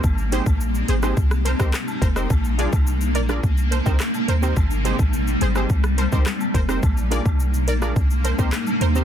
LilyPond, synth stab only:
\new Staff \with { instrumentName = "Synth stab" } { \time 4/4 \key c \minor \tempo 4 = 106 r8 <c' ees' g' aes' c''>16 r8. <aes' c''>16 <c' ees' g' aes' c''>16 r8 <bes' c''>16 <c' ees' g' bes' c''>16 r8 <bes' c''>16 <c' ees' g' bes' c''>16 | r8 <d' f' aes' bes' d''>16 r8. <bes' d''>16 <d' f' aes' bes' d''>16 r8 <bes' c''>16 <c' ees' g' bes' c''>16 r8 <bes' c''>16 <c' ees' g' bes' c''>16 | r8 <c' ees' g' aes' c''>16 r8. <aes' c''>16 <c' ees' g' aes' c''>16 r8 <bes' c''>16 <c' ees' g' bes' c''>16 r8 <bes' c''>16 <c' ees' g' bes' c''>16 | r8 <d' f' aes' bes' d''>16 r8. <bes' d''>16 <d' f' aes' bes' d''>16 r8 <bes' c''>16 <c' ees' g' bes' c''>16 r8 <bes' c''>16 <c' ees' g' bes' c''>16 | }